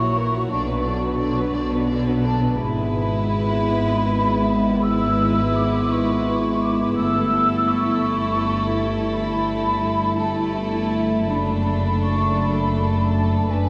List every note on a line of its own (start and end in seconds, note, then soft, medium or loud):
0.00 0.38 A#1 medium
0.00 0.39 A#2 medium
0.00 2.40 F#3 medium
0.00 0.17 F#3 soft
0.00 0.51 E4 medium
0.00 0.17 F#4 soft
0.00 0.17 C#5 soft
0.00 1.89 C#6 medium
0.16 0.34 E3 soft
0.16 0.33 E4 soft
0.16 0.34 A#4 medium
0.34 0.51 F#3 soft
0.34 0.51 F#4 soft
0.34 0.51 C#5 soft
0.50 1.42 B1 medium
0.50 1.42 B2 medium
0.50 0.66 D3 soft
0.50 0.66 D4 soft
0.50 2.40 D4 medium
0.50 0.67 D5 medium
0.68 0.85 F#3 soft
0.68 0.85 B3 soft
0.68 0.85 B4 soft
0.85 1.02 D3 soft
0.85 1.03 D4 soft
0.85 1.02 D5 soft
1.02 1.20 F#3 medium
1.02 1.20 B3 medium
1.02 1.19 B4 medium
1.19 1.35 D3 medium
1.19 1.36 D4 soft
1.19 1.36 D5 medium
1.37 1.54 F#3 medium
1.37 1.55 B3 medium
1.37 1.55 B4 medium
1.53 2.46 B1 medium
1.53 2.46 B2 medium
1.53 1.71 D3 medium
1.53 1.72 D4 medium
1.53 1.72 D5 medium
1.71 1.89 F#3 soft
1.71 1.90 B3 medium
1.71 1.89 B4 soft
1.88 2.05 D3 medium
1.88 2.06 D4 medium
1.88 2.04 D5 soft
2.05 2.24 F#3 medium
2.05 2.23 B3 medium
2.05 2.23 B4 soft
2.23 2.41 D3 medium
2.23 2.41 D4 medium
2.23 2.41 D5 medium
2.23 2.56 A5 medium
2.40 2.59 F#3 medium
2.40 2.59 B3 soft
2.40 2.56 B4 soft
2.57 6.93 G#1 medium
2.57 6.94 G#2 medium
2.57 4.79 G#3 medium
2.57 8.01 B3 medium
2.57 6.93 E4 medium
2.57 4.79 E4 medium
2.57 4.78 B4 medium
2.57 3.27 B5 medium
3.28 4.80 B5 medium
4.83 6.94 G#3 medium
4.83 6.94 E4 medium
4.83 6.94 B4 medium
4.83 5.56 E6 medium
5.56 5.91 D6 medium
5.91 6.62 C#6 medium
6.61 6.97 D6 medium
6.97 11.24 G1 medium
6.97 11.24 G2 medium
6.97 10.14 A3 medium
6.97 10.14 E4 medium
6.97 11.24 E4 medium
6.97 10.15 A4 medium
6.97 7.68 E6 loud
7.69 8.81 C#6 medium
8.07 11.26 A3 medium
9.12 10.18 B5 medium
10.18 11.26 A3 medium
10.18 11.26 E4 medium
10.18 11.26 A4 medium
10.18 10.91 A5 medium
11.27 13.45 F#1 medium
11.27 13.45 F#2 medium
11.27 13.69 A3 medium
11.27 13.46 A3 medium
11.27 13.69 D4 medium
11.27 13.48 D4 medium
11.27 13.45 A4 medium
11.27 11.98 B5 medium
12.03 12.39 C#6 medium
12.39 13.12 B5 medium
13.12 13.50 A5 medium
13.49 13.69 F#1 medium
13.49 13.69 F#2 medium
13.49 13.69 A3 medium
13.49 13.69 D4 medium
13.49 13.69 B4 medium
13.49 13.69 G#5 medium